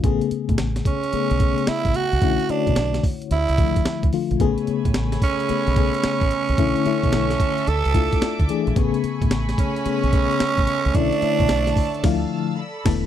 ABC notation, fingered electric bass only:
X:1
M:4/4
L:1/16
Q:"Swing 16ths" 1/4=110
K:A
V:1 name="Fingered electric bass" clef=bass
A,,, z2 A,, A,,,2 z3 B,,,2 z2 A,,, z =C,, | B,,, z2 B,, B,,,2 z2 D,, C,,2 z2 D,, z _B,,, | A,,, z2 A,, A,,,2 z3 B,,,2 z2 A,,, z =C,, | B,,, z2 B,, B,,,2 z2 D,, C,,2 z2 D,, z _B,,, |
A,,, z2 A,, A,,,2 z3 B,,,2 z2 A,,, z =C,, | B,,, z2 B,, B,,,2 z2 D,,2 z4 E,,,2 |]